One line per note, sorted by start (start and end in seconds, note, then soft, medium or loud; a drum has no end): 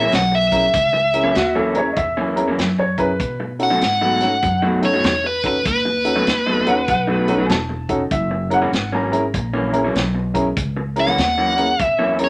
0.00 0.11 A#1 medium
0.00 0.19 F#2 medium
0.00 0.18 E3 medium
0.00 0.18 A#3 medium
0.00 0.18 C#4 medium
0.00 0.12 E5 medium
0.12 0.72 B1 medium
0.12 0.34 F#5 medium
0.12 snare medium
0.12 closed hi-hat medium
0.32 2.14 E5 medium
0.32 muted clean electric guitar stroke soft
0.52 0.63 C#4 medium
0.52 0.63 E4 medium
0.52 0.63 G#4 medium
0.52 0.63 A#4 medium
0.52 kick medium
0.52 closed hi-hat medium
0.74 1.33 C#2 medium
0.74 kick loud
0.74 closed hi-hat medium
0.93 muted clean electric guitar stroke soft
1.13 1.24 C#4 medium
1.13 1.24 E4 medium
1.13 1.24 G#4 medium
1.13 1.25 A#4 medium
1.13 closed hi-hat medium
1.24 1.34 F#2 medium
1.24 1.35 E3 medium
1.24 1.35 A#3 medium
1.24 1.35 C#4 medium
1.35 1.95 D#2 medium
1.35 1.55 F#4 medium
1.35 muted clean electric guitar stroke soft
1.35 snare medium
1.35 closed hi-hat medium
1.55 1.79 F#2 medium
1.55 1.79 E3 medium
1.55 1.78 A#3 medium
1.55 1.78 C#4 medium
1.55 1.76 A4 medium
1.74 1.85 C#4 medium
1.74 1.86 E4 medium
1.74 1.86 G#4 medium
1.74 1.86 A#4 medium
1.74 1.97 C#5 medium
1.74 closed hi-hat medium
1.93 2.56 E2 medium
1.93 1.97 D#5 medium
1.93 kick medium
1.93 closed hi-hat medium
1.97 2.76 E5 medium
1.97 muted clean electric guitar stroke soft
2.17 2.40 F#2 medium
2.17 2.40 E3 medium
2.17 2.40 A#3 medium
2.17 2.40 C#4 medium
2.36 2.47 C#4 medium
2.36 2.47 E4 medium
2.36 2.47 G#4 medium
2.36 2.47 A#4 medium
2.36 closed hi-hat medium
2.48 2.65 F#2 medium
2.48 2.65 E3 medium
2.48 2.65 A#3 medium
2.48 2.64 C#4 medium
2.58 3.18 F#2 medium
2.58 snare loud
2.58 closed hi-hat medium
2.79 2.99 C#5 medium
2.79 muted clean electric guitar stroke soft
2.98 3.09 C#4 medium
2.98 3.09 E4 medium
2.98 3.09 G#4 medium
2.98 3.09 A#4 medium
2.98 3.51 B4 medium
2.98 kick medium
2.98 closed hi-hat medium
3.20 3.79 B2 medium
3.20 kick loud
3.20 closed hi-hat medium
3.40 muted clean electric guitar stroke soft
3.59 3.70 C#4 medium
3.59 3.70 D#4 medium
3.59 3.70 F#4 medium
3.59 3.70 A4 medium
3.59 4.81 F#5 medium
3.59 closed hi-hat medium
3.70 3.81 B2 medium
3.70 3.81 F#3 medium
3.70 3.81 A3 medium
3.70 3.81 D#4 medium
3.81 4.41 G#2 medium
3.81 muted clean electric guitar stroke soft
3.81 snare loud
3.81 closed hi-hat medium
4.01 4.25 B2 medium
4.01 4.24 F#3 medium
4.01 4.24 A3 medium
4.01 4.24 D#4 medium
4.21 4.32 C#4 medium
4.21 4.32 D#4 medium
4.21 4.32 F#4 medium
4.21 4.32 A4 medium
4.21 snare soft
4.21 closed hi-hat medium
4.43 5.02 F#2 medium
4.43 muted clean electric guitar stroke soft
4.43 kick loud
4.43 closed hi-hat medium
4.62 4.86 B2 medium
4.62 4.86 F#3 medium
4.62 4.86 A3 medium
4.62 4.85 D#4 medium
4.82 4.93 C#4 medium
4.82 4.93 D#4 medium
4.82 4.93 F#4 medium
4.82 4.93 A4 medium
4.82 5.04 C#5 medium
4.82 closed hi-hat medium
4.93 5.11 B2 medium
4.93 5.11 F#3 medium
4.93 5.10 A3 medium
4.93 5.10 D#4 medium
5.03 5.63 E2 medium
5.03 5.25 C#5 medium
5.03 snare loud
5.03 closed hi-hat medium
5.24 5.45 B4 medium
5.24 muted clean electric guitar stroke soft
5.44 5.55 C#4 medium
5.44 5.55 D#4 medium
5.44 5.55 F#4 medium
5.44 5.55 A4 medium
5.44 5.66 B4 medium
5.44 kick medium
5.44 closed hi-hat medium
5.65 6.25 D#2 medium
5.65 7.47 B4 medium
5.65 kick loud
5.65 closed hi-hat medium
5.85 muted clean electric guitar stroke soft
6.05 6.16 C#4 medium
6.05 6.16 D#4 medium
6.05 6.16 F#4 medium
6.05 6.16 A4 medium
6.05 closed hi-hat medium
6.16 6.26 B2 medium
6.16 6.26 F#3 medium
6.16 6.26 A3 medium
6.16 6.27 D#4 medium
6.27 6.86 D#2 medium
6.27 muted clean electric guitar stroke soft
6.27 snare medium
6.27 closed hi-hat medium
6.46 6.70 B2 medium
6.46 6.70 F#3 medium
6.46 6.70 A3 medium
6.46 6.69 D#4 medium
6.66 6.77 C#4 medium
6.66 6.77 D#4 medium
6.66 6.77 F#4 medium
6.66 6.77 A4 medium
6.66 6.87 F#5 medium
6.66 closed hi-hat medium
6.88 7.48 B1 medium
6.88 7.48 F#5 medium
6.88 muted clean electric guitar stroke soft
6.88 kick medium
6.88 closed hi-hat medium
7.07 7.31 B2 medium
7.07 7.31 F#3 medium
7.07 7.31 A3 medium
7.07 7.31 D#4 medium
7.28 7.39 C#4 medium
7.28 7.39 D#4 medium
7.28 7.39 F#4 medium
7.28 7.39 A4 medium
7.28 closed hi-hat medium
7.38 7.56 B2 medium
7.38 7.56 F#3 medium
7.38 7.55 A3 medium
7.38 7.55 D#4 medium
7.46 7.50 G#5 soft
7.46 closed hi-hat medium
7.50 8.09 E1 medium
7.50 8.09 A5 medium
7.50 snare loud
7.69 muted clean electric guitar stroke soft
7.89 8.00 C#4 medium
7.89 8.00 D#4 medium
7.89 8.00 F#4 medium
7.89 8.00 A4 medium
7.89 kick medium
7.89 closed hi-hat medium
8.11 8.71 F#1 medium
8.11 8.51 E5 medium
8.11 kick loud
8.11 closed hi-hat medium
8.31 muted clean electric guitar stroke soft
8.50 8.61 C#4 medium
8.50 8.61 E4 medium
8.50 8.61 G#4 medium
8.50 8.61 A#4 medium
8.50 8.92 F#5 medium
8.50 closed hi-hat medium
8.62 8.71 F#2 medium
8.62 8.72 E3 medium
8.62 8.72 A#3 medium
8.62 8.72 C#4 medium
8.73 9.32 G#1 medium
8.73 muted clean electric guitar stroke soft
8.73 snare loud
8.73 closed hi-hat medium
8.92 9.16 F#2 medium
8.92 9.16 E3 medium
8.92 9.16 A#3 medium
8.92 9.15 C#4 medium
8.92 10.13 A#5 medium
9.11 9.23 C#4 medium
9.11 9.23 E4 medium
9.11 9.23 G#4 medium
9.11 9.23 A#4 medium
9.11 closed hi-hat medium
9.34 9.93 A#1 medium
9.34 muted clean electric guitar stroke soft
9.34 kick medium
9.34 closed hi-hat medium
9.53 9.77 F#2 medium
9.53 9.77 E3 medium
9.53 9.77 A#3 medium
9.53 9.77 C#4 medium
9.73 9.84 C#4 medium
9.73 9.84 E4 medium
9.73 9.84 G#4 medium
9.73 9.84 A#4 medium
9.73 closed hi-hat medium
9.84 10.02 F#2 medium
9.84 10.02 E3 medium
9.84 10.01 A#3 medium
9.84 10.01 C#4 medium
9.95 10.55 B1 medium
9.95 snare medium
9.95 closed hi-hat medium
10.15 muted clean electric guitar stroke medium
10.34 10.45 C#4 medium
10.34 10.45 E4 medium
10.34 10.45 G#4 medium
10.34 10.45 A#4 medium
10.34 kick medium
10.34 closed hi-hat medium
10.57 11.16 C#2 medium
10.57 kick loud
10.57 closed hi-hat medium
10.77 muted clean electric guitar stroke soft
10.96 11.07 C#4 medium
10.96 11.07 E4 medium
10.96 11.07 G#4 medium
10.96 11.07 A#4 medium
10.96 closed hi-hat medium
11.00 11.84 F#5 loud
11.07 11.17 F#2 medium
11.07 11.17 E3 medium
11.07 11.17 A#3 medium
11.07 11.18 C#4 medium
11.17 11.77 D#2 medium
11.17 muted clean electric guitar stroke soft
11.17 snare loud
11.17 closed hi-hat medium
11.38 11.61 F#2 medium
11.38 11.61 E3 medium
11.38 11.61 A#3 medium
11.38 11.61 C#4 medium
11.57 11.68 C#4 medium
11.57 11.68 E4 medium
11.57 11.68 G#4 medium
11.57 11.68 A#4 medium
11.57 closed hi-hat medium
11.79 12.29 E2 medium
11.79 muted clean electric guitar stroke soft
11.79 kick loud
11.79 closed hi-hat medium
11.84 12.18 E5 loud
11.99 12.23 F#2 medium
11.99 12.22 E3 medium
11.99 12.22 A#3 medium
11.99 12.22 C#4 medium
12.19 12.29 C#4 medium
12.19 12.29 E4 medium
12.19 12.29 G#4 medium
12.19 12.29 A#4 medium
12.19 closed hi-hat medium
12.24 12.29 C#5 medium